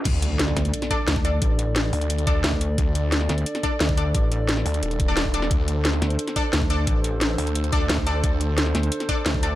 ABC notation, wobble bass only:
X:1
M:4/4
L:1/8
Q:1/4=176
K:Cdor
V:1 name="Wobble bass" clef=bass
z3 D,, z2 D,,2 | A,,,3 z3 D,,2 | z3 D,, z2 D,,2 | A,,,3 z4 z |
z3 D,, z2 D,,2 | A,,,3 z3 D,,2 | z3 D,, z2 D,,2 |]